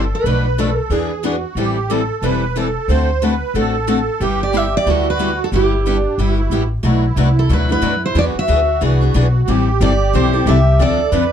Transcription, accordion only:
0, 0, Header, 1, 2, 480
1, 0, Start_track
1, 0, Key_signature, 1, "major"
1, 0, Tempo, 329308
1, 370, Time_signature, 4, 2, 24, 8
1, 16504, End_track
2, 0, Start_track
2, 0, Title_t, "Accordion"
2, 0, Program_c, 0, 21
2, 0, Note_on_c, 0, 69, 77
2, 373, Note_on_c, 0, 71, 99
2, 378, Note_off_c, 0, 69, 0
2, 851, Note_on_c, 0, 69, 84
2, 866, Note_off_c, 0, 71, 0
2, 1325, Note_on_c, 0, 68, 91
2, 1345, Note_off_c, 0, 69, 0
2, 1808, Note_on_c, 0, 66, 73
2, 1822, Note_off_c, 0, 68, 0
2, 2303, Note_off_c, 0, 66, 0
2, 2307, Note_on_c, 0, 67, 89
2, 2767, Note_on_c, 0, 69, 94
2, 2792, Note_off_c, 0, 67, 0
2, 3253, Note_on_c, 0, 71, 106
2, 3263, Note_off_c, 0, 69, 0
2, 3746, Note_off_c, 0, 71, 0
2, 3746, Note_on_c, 0, 69, 86
2, 4215, Note_on_c, 0, 72, 102
2, 4232, Note_off_c, 0, 69, 0
2, 4707, Note_off_c, 0, 72, 0
2, 4708, Note_on_c, 0, 71, 100
2, 5178, Note_on_c, 0, 69, 102
2, 5193, Note_off_c, 0, 71, 0
2, 6144, Note_on_c, 0, 67, 99
2, 6162, Note_off_c, 0, 69, 0
2, 7096, Note_on_c, 0, 66, 98
2, 7125, Note_off_c, 0, 67, 0
2, 7995, Note_off_c, 0, 66, 0
2, 8062, Note_on_c, 0, 64, 77
2, 8538, Note_on_c, 0, 62, 76
2, 8550, Note_off_c, 0, 64, 0
2, 9028, Note_off_c, 0, 62, 0
2, 9031, Note_on_c, 0, 64, 86
2, 9278, Note_off_c, 0, 64, 0
2, 9300, Note_on_c, 0, 64, 73
2, 9743, Note_off_c, 0, 64, 0
2, 9976, Note_on_c, 0, 64, 77
2, 11910, Note_on_c, 0, 66, 91
2, 11951, Note_off_c, 0, 64, 0
2, 13822, Note_on_c, 0, 67, 100
2, 13879, Note_off_c, 0, 66, 0
2, 15739, Note_on_c, 0, 69, 90
2, 15794, Note_off_c, 0, 67, 0
2, 16182, Note_off_c, 0, 69, 0
2, 16208, Note_on_c, 0, 71, 102
2, 16504, Note_off_c, 0, 71, 0
2, 16504, End_track
0, 0, End_of_file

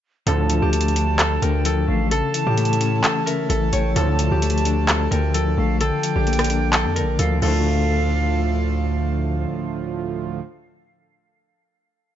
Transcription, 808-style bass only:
0, 0, Header, 1, 2, 480
1, 0, Start_track
1, 0, Key_signature, -1, "minor"
1, 0, Tempo, 461538
1, 279, Time_signature, 4, 2, 24, 8
1, 12639, End_track
2, 0, Start_track
2, 0, Title_t, "808-style bass"
2, 0, Program_c, 0, 38
2, 277, Note_on_c, 0, 38, 116
2, 630, Note_off_c, 0, 38, 0
2, 645, Note_on_c, 0, 38, 106
2, 1445, Note_off_c, 0, 38, 0
2, 1478, Note_on_c, 0, 38, 102
2, 1939, Note_off_c, 0, 38, 0
2, 1958, Note_on_c, 0, 33, 101
2, 2311, Note_off_c, 0, 33, 0
2, 2565, Note_on_c, 0, 45, 107
2, 3134, Note_off_c, 0, 45, 0
2, 3638, Note_on_c, 0, 33, 110
2, 3869, Note_off_c, 0, 33, 0
2, 3878, Note_on_c, 0, 33, 103
2, 4109, Note_off_c, 0, 33, 0
2, 4118, Note_on_c, 0, 38, 111
2, 4471, Note_off_c, 0, 38, 0
2, 4486, Note_on_c, 0, 38, 104
2, 5285, Note_off_c, 0, 38, 0
2, 5318, Note_on_c, 0, 38, 104
2, 5779, Note_off_c, 0, 38, 0
2, 5798, Note_on_c, 0, 34, 107
2, 6151, Note_off_c, 0, 34, 0
2, 6405, Note_on_c, 0, 34, 110
2, 7125, Note_on_c, 0, 41, 100
2, 7141, Note_off_c, 0, 34, 0
2, 7302, Note_on_c, 0, 34, 100
2, 7317, Note_off_c, 0, 41, 0
2, 7469, Note_off_c, 0, 34, 0
2, 7478, Note_on_c, 0, 38, 111
2, 7709, Note_off_c, 0, 38, 0
2, 7718, Note_on_c, 0, 38, 112
2, 9836, Note_off_c, 0, 38, 0
2, 12639, End_track
0, 0, End_of_file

